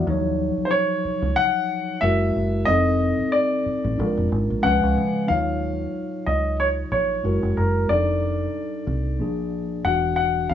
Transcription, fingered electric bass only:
0.07 D#2
0.57 muted fingered electric bass stroke
1.05 muted fingered electric bass stroke
1.22 C#2
2.02 F#1
2.36 F#1
2.68 F1
3.19 muted fingered electric bass stroke
3.66 muted fingered electric bass stroke
3.84 A1
3.99 A#1
4.17 F1
4.32 G#1
4.50 A#1
4.65 C#2
4.83 C#2
4.97 C#3
5.30 D#2
6.27 C#2
6.92 A#1
7.24 F#1
7.43 F#1
7.57 F#1
7.90 F1
8.87 C2
9.19 A#1
9.85 E1
10.50 D#2

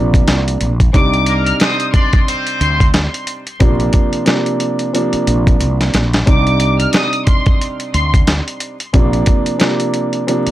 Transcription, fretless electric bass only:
Already playing: A#1
0.27 C2
0.61 A#1
0.94 C2
2.61 D2
3.61 A#1
5.13 muted fretless electric bass stroke
5.27 A#1
5.61 C2
5.94 A#1
6.28 C2
7.94 D2
8.94 A#1
10.47 muted fretless electric bass stroke

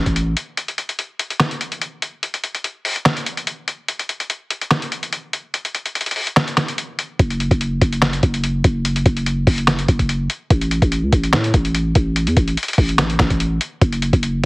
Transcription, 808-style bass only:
Already playing: A1
7.19 F#1
7.51 F#1
7.81 F#1
8.23 F#1
8.64 F#1
9.06 F#1
9.47 F#1
9.88 F#1
10.50 A1
10.82 A1
11.03 C#2
11.12 A1
11.33 A2
11.54 A1
11.95 A1
12.27 E2
12.37 A1
12.78 A1
13.19 A1
13.81 F#1
14.13 F#1

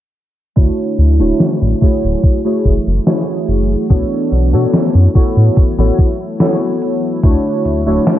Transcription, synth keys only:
0.56 A3 D4 E4 F#4 C#5
1.19 A3 D4 E4 F#4 C#5
1.81 A3 E4 F#4 G#4 C#5
2.44 A3 E4 F#4 G#4 C#5
3.06 A3 E4 F#4 G#4 C#5
3.89 B3 D4 F#4 A4 C#5
4.53 B3 D4 F#4 A4 C#5
5.15 B3 E4 F#4 A4 C#5
5.78 B3 E4 F#4 A4 C#5
6.40 B3 E4 F#4 A4 C#5
7.23 A3 D4 E4 F#4 C#5
7.86 A3 D4 E4 F#4 C#5

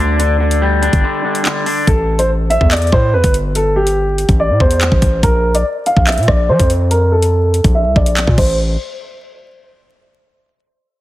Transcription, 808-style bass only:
Already playing: D2
0.93 G1
1.87 A1
2.61 E2
2.92 A2
3.13 E2
3.24 G1
4.29 A1
4.50 A2
4.60 E2
4.92 A1
5.02 A1
5.23 A#1
5.97 A#1
6.17 A#2
6.28 A#1
6.49 F3
6.60 F2
7.64 A#1
7.85 C2
7.96 A#1
8.27 A#2
8.38 A1

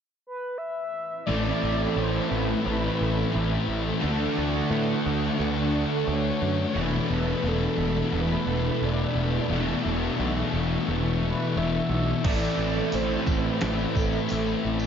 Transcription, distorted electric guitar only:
1.27 A2 E3 A3
1.95 A2 E3 A3
2.63 A2 E3 A3
3.32 A2 E3 A3
4.00 D3 A3 D4
4.68 D3 A3 D4
5.37 D3 A3 D4
6.05 D3 A3 D4
6.74 E2 B2 E3
7.43 E2 B2 E3
8.12 E2 B2 E3
8.80 E2 B2 E3
9.49 E2 B2 E3
10.16 E2 B2 E3
10.86 E2 B2 E3
11.54 E2 B2 E3
12.23 A2 E3 A3
12.91 A2 E3 A3
13.59 A2 E3 A3
14.28 A2 E3 A3

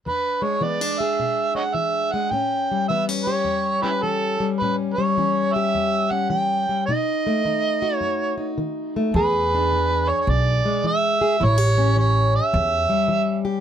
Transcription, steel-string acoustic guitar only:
0.06 E2 D4
0.42 G#3
0.61 E3 B3
0.81 D4
1.00 G#4
1.20 B2
1.55 D4
1.74 E3
2.14 G#3
2.31 A2 C#4
2.71 G3
2.90 E3 B3
3.09 C#4
3.27 G4
3.45 E2
3.83 C#4
4.03 E3
4.40 G3
4.62 A2 C#4
4.98 G3
5.18 E3 C#4
5.56 G4
5.75 E2
6.11 C#4
6.30 E3
6.69 G3
6.88 B2 D#4
7.27 A3
7.45 D#3 D#4
7.82 F#4
8.01 F#2
8.38 D#4
8.58 D#3
8.96 A3
9.15 E2 G#4
9.55 D4
9.73 E3
10.30 B2
10.65 G#3
10.84 E3
11.21 G#4
11.40 A2 E4
11.58 G4
11.78 C#4
11.96 E3
12.53 E2
12.89 G3
13.08 E3
13.45 G4

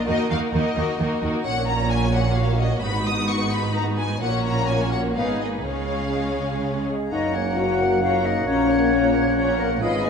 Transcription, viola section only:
0.06 A#3 D#4
0.29 A#3 D#4
0.52 A#3 D#4
0.76 A#3 D#4
0.99 A#3 D#4
1.22 A#3 D#4
1.46 A#3 C#4
2.83 B3 D#4
4.23 A#3 C#4
5.18 B3 D#4
5.43 A#3
5.66 G#3 C#4
7.13 C#4
7.35 A#3
7.58 C#4
7.80 A#3
8.02 C#4
8.25 A#3
8.47 C#4
8.70 A#3
8.92 C#4
9.14 A#3
9.36 C#4
9.60 A#3
9.82 G#3
10.05 B3

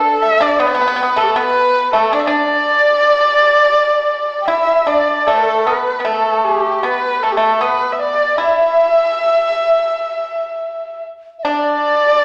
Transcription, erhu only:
Already playing: A4
0.22 E5
0.42 D5
0.60 B4
1.17 A4
1.37 B4
1.94 A4
2.12 D5
2.20 E5
2.27 D5
4.48 E5
4.87 D5
5.27 A4
5.66 B4
5.99 B4
6.06 A4
6.45 G4
6.85 B4
7.23 A4
7.32 G4
7.37 A4
7.63 B4
7.92 E5
8.00 D5
8.38 E5
11.47 D5

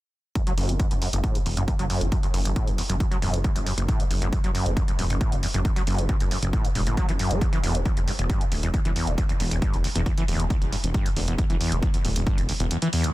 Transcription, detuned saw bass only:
0.58 F#1
0.69 F#1
0.91 F#1
1.13 F#1
1.46 E1
1.57 F#1
1.79 F#1
2.01 F#1
2.34 F#1
2.45 F#1
2.67 F#1
2.90 F#1
3.22 E1
3.34 F#1
3.56 F#1
3.78 F#1
4.11 F#1
4.22 F#1
4.44 F#1
4.66 F#1
4.99 E1
5.10 F#1
5.32 F#1
5.54 F#1
5.87 F#1
5.98 F#1
6.20 F#1
6.42 F#1
6.75 E1
6.87 F#1
7.09 F#1
7.31 F#1
7.63 E1
7.75 E1
7.97 E1
8.19 E1
8.52 D1
8.63 E1
8.85 E1
9.07 E1
9.40 E1
9.51 E1
9.73 E1
9.95 E1
10.28 D1
10.39 E1
10.62 E1
10.84 E1
11.16 E1
11.28 E1
11.50 E1
11.72 E1
12.05 D1
12.16 E1
12.38 E1
12.60 E1

